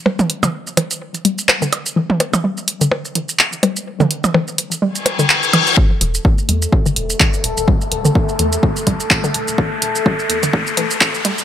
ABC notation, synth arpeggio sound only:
X:1
M:4/4
L:1/16
Q:"Swing 16ths" 1/4=126
K:Em
V:1 name="Synth arpeggio sound" clef=bass
G, z2 D, z2 E, z3 G, z2 D, z2 | E, z3 G, z2 D, z2 E, z3 G, z | z D, z2 E, z3 G, z2 D, z2 E, z | z2 E, z3 G, z2 D, z2 E, z3 |
G, z2 D, z2 E, z3 G, z2 D, z2 | E, z3 G, z2 D, z2 E, z3 G, z |]